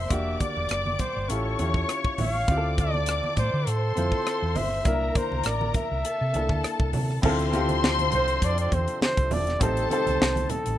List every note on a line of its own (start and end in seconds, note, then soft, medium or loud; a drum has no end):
0.00 0.09 A#3 medium
0.00 0.10 D4 medium
0.00 0.12 F4 medium
0.00 0.42 E5 medium
0.00 0.12 A5 medium
0.09 0.35 E1 medium
0.09 0.87 A#3 medium
0.09 0.88 D4 medium
0.09 0.89 F#4 medium
0.09 0.89 G4 medium
0.09 1.27 D5 medium
0.09 1.27 D6 medium
0.09 kick loud
0.09 closed hi-hat medium
0.40 1.01 D5 loud
0.40 kick medium
0.40 closed hi-hat medium
0.40 muted conga soft
0.40 high conga medium
0.57 0.68 E1 medium
0.57 high conga medium
0.69 0.94 F#1 medium
0.69 cross-stick loud
0.69 closed hi-hat medium
0.86 high conga medium
0.99 1.31 C5 medium
0.99 kick medium
0.99 closed hi-hat medium
0.99 muted conga soft
0.99 low conga medium
1.16 1.27 G1 medium
1.28 1.54 A1 medium
1.28 1.53 C#4 medium
1.28 1.54 E4 medium
1.28 1.54 F4 medium
1.28 1.55 G4 medium
1.28 1.92 A4 medium
1.28 2.46 C#5 medium
1.28 2.46 C#6 medium
1.28 closed hi-hat medium
1.58 1.83 E2 medium
1.58 2.16 C#4 medium
1.58 2.17 E4 medium
1.58 2.17 F4 medium
1.58 2.18 G4 medium
1.58 closed hi-hat medium
1.58 muted conga soft
1.58 high conga medium
1.74 kick medium
1.74 cross-stick soft
1.89 cross-stick medium
1.89 closed hi-hat medium
1.89 muted conga soft
2.05 kick medium
2.18 2.43 A1 medium
2.18 2.75 F5 loud
2.18 open hi-hat medium
2.18 muted conga soft
2.18 high conga medium
2.18 low conga medium
2.47 3.20 D2 loud
2.47 3.25 C4 medium
2.47 3.26 E4 medium
2.47 3.26 F4 medium
2.47 2.56 G4 medium
2.47 3.64 D5 medium
2.47 3.64 D6 medium
2.47 kick loud
2.47 closed hi-hat medium
2.47 muted conga soft
2.57 3.30 A4 medium
2.78 3.34 D5 loud
2.78 kick medium
2.78 closed hi-hat medium
2.78 muted conga soft
2.78 high conga medium
2.94 high conga medium
3.06 cross-stick loud
3.06 closed hi-hat loud
3.24 high conga medium
3.37 3.50 A2 medium
3.37 3.69 C5 loud
3.37 kick medium
3.37 closed hi-hat medium
3.37 muted conga soft
3.37 low conga medium
3.54 3.64 D3 medium
3.66 3.91 A2 medium
3.66 4.58 A4 loud
3.66 4.83 C5 medium
3.66 4.83 C6 medium
3.66 closed hi-hat loud
3.66 muted conga soft
3.95 4.10 F2 medium
3.95 4.53 C4 medium
3.95 4.54 E4 medium
3.95 4.54 F4 medium
3.95 4.55 C5 medium
3.95 closed hi-hat medium
3.95 muted conga soft
3.95 high conga medium
4.12 kick medium
4.12 cross-stick soft
4.27 cross-stick medium
4.27 closed hi-hat medium
4.42 4.53 E2 medium
4.55 4.80 G1 medium
4.55 5.18 E5 loud
4.55 open hi-hat medium
4.55 high conga medium
4.55 low conga medium
4.73 cross-stick soft
4.84 5.10 C2 loud
4.84 5.62 A#3 medium
4.84 5.63 D4 medium
4.84 5.63 E4 medium
4.84 6.02 A#4 medium
4.84 5.64 A#4 medium
4.84 6.02 A#5 medium
4.84 kick loud
4.84 closed hi-hat medium
4.84 low conga medium
5.15 5.47 C5 medium
5.15 kick loud
5.15 closed hi-hat medium
5.15 high conga medium
5.31 5.42 C2 medium
5.31 high conga medium
5.44 5.69 A1 medium
5.44 5.75 D5 medium
5.44 cross-stick loud
5.44 closed hi-hat loud
5.44 muted conga soft
5.61 high conga medium
5.74 6.90 E5 loud
5.74 kick medium
5.74 closed hi-hat medium
5.74 muted conga soft
5.74 low conga medium
5.91 6.02 C2 medium
6.04 7.21 A4 medium
6.04 7.21 A5 medium
6.04 closed hi-hat loud
6.04 muted conga soft
6.21 6.32 C3 medium
6.33 6.48 C2 medium
6.33 6.91 A#3 medium
6.33 6.91 D4 medium
6.33 6.92 E4 medium
6.33 6.93 A4 medium
6.33 closed hi-hat medium
6.33 high conga medium
6.49 6.61 D2 medium
6.49 kick medium
6.49 cross-stick soft
6.64 cross-stick medium
6.64 closed hi-hat medium
6.64 muted conga soft
6.80 6.91 C2 medium
6.80 kick loud
6.93 7.18 C3 loud
6.93 open hi-hat medium
6.93 muted conga soft
6.93 high conga medium
6.93 low conga medium
7.11 cross-stick soft
7.22 8.08 D2 loud
7.22 9.59 C3 medium
7.22 9.59 F3 medium
7.22 7.43 C4 medium
7.22 9.59 D4 medium
7.22 7.43 E4 medium
7.22 7.44 F4 medium
7.22 7.44 A4 loud
7.22 9.27 C5 loud
7.22 9.59 E5 medium
7.22 9.27 C6 loud
7.22 kick loud
7.22 crash loud
7.22 muted conga soft
7.22 low conga medium
7.39 closed hi-hat medium
7.52 8.30 C4 medium
7.52 8.30 E4 medium
7.52 8.31 F4 medium
7.52 8.32 G4 loud
7.52 closed hi-hat medium
7.52 muted conga soft
7.52 high conga medium
7.69 closed hi-hat medium
7.69 high conga medium
7.83 snare loud
7.83 muted conga soft
7.99 closed hi-hat medium
7.99 high conga medium
8.12 8.37 C2 medium
8.12 8.46 C5 loud
8.12 closed hi-hat medium
8.12 muted conga soft
8.12 low conga medium
8.28 closed hi-hat medium
8.42 8.66 F2 medium
8.42 8.59 D5 loud
8.42 kick medium
8.42 closed hi-hat loud
8.42 muted conga soft
8.58 8.76 D5 loud
8.58 closed hi-hat medium
8.72 8.85 E2 medium
8.72 9.02 C5 medium
8.72 kick medium
8.72 closed hi-hat medium
8.72 high conga medium
8.87 closed hi-hat soft
9.01 9.35 C5 loud
9.01 snare loud
9.01 high conga medium
9.17 9.29 C2 medium
9.17 kick medium
9.17 closed hi-hat soft
9.31 9.56 E1 medium
9.31 9.63 D5 loud
9.31 open hi-hat medium
9.31 high conga medium
9.31 low conga medium
9.47 snare soft
9.47 closed hi-hat soft
9.59 9.85 A1 loud
9.59 10.78 C3 medium
9.59 10.78 G3 medium
9.59 10.78 A3 medium
9.59 9.80 C4 medium
9.59 9.81 D#4 medium
9.59 10.78 D#4 medium
9.59 9.81 G4 medium
9.59 10.48 A4 medium
9.59 9.82 A4 medium
9.59 9.91 C5 loud
9.59 10.48 A5 loud
9.59 kick loud
9.59 closed hi-hat loud
9.59 low conga medium
9.77 closed hi-hat soft
9.89 10.67 C4 medium
9.89 10.68 D#4 medium
9.89 10.69 G4 medium
9.89 10.69 A4 medium
9.89 10.52 C5 loud
9.89 closed hi-hat medium
9.89 high conga medium
10.07 10.18 C2 medium
10.07 closed hi-hat soft
10.07 high conga medium
10.20 10.45 C2 medium
10.20 snare loud
10.20 muted conga soft
10.36 closed hi-hat soft
10.36 high conga medium
10.49 10.78 A4 medium
10.49 closed hi-hat medium
10.49 low conga medium
10.66 10.78 A1 medium
10.66 closed hi-hat medium